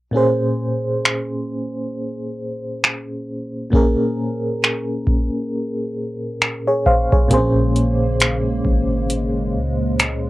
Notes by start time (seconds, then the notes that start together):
0.12 A#2 A#3 C#4
0.16 G#4 C5
1.05 finger snap
2.84 finger snap
3.70 A#2 A#3 C#4, kick
3.74 G#4 A#4
4.64 finger snap
5.07 kick
6.42 finger snap
6.67 G#4 C#5
6.86 C5 F5, kick
7.12 G#4 C#5, kick
7.28 A#1 A#2 C#3 G#3 A#3 C4, kick, closed hi-hat
7.33 G#4 C5
7.38 C#4
7.76 closed hi-hat
8.20 finger snap, closed hi-hat
8.65 G#1, kick
9.10 closed hi-hat
9.55 C#2
10.00 finger snap, closed hi-hat